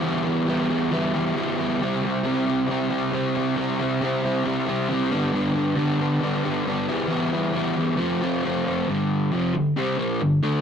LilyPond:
\new Staff \with { instrumentName = "Overdriven electric guitar" } { \time 4/4 \key g \mixolydian \tempo 4 = 136 <e g b e'>8 <g b e'>8 <e g b e'>8 <g b e'>8 <e g b e'>8 <e g b e'>8 <e g b e'>8 <g b e'>8 | <c g c' e'>8 <g c' e'>8 <c g c' e'>8 <g c' e'>8 <c g c' e'>8 <c g c' e'>8 <c g c' e'>8 <g c' e'>8 | <c g c' e'>8 <g c' e'>8 <c g c' e'>8 <g c' e'>8 <c g c' e'>8 <c g c' e'>8 <c g c' e'>8 <g, d g b d'>8 | <g, d g b d'>8 <g b d'>8 <g, d g b d'>8 <g b d'>8 <d g b d'>8 <g, d g b d'>8 <d g b d'>8 <e g b e'>8 |
<e g b e'>8 <g b e'>8 <e g b e'>8 <g b e'>8 <f a c' f'>8 <f a c' f'>8 <f a c' f'>8 <a c' f'>8 | <g, d g>4 <f, c f>8 <g, d>8 <c g c'>8 <bes, f bes>8 <g, d>8 <d a d'>8 | }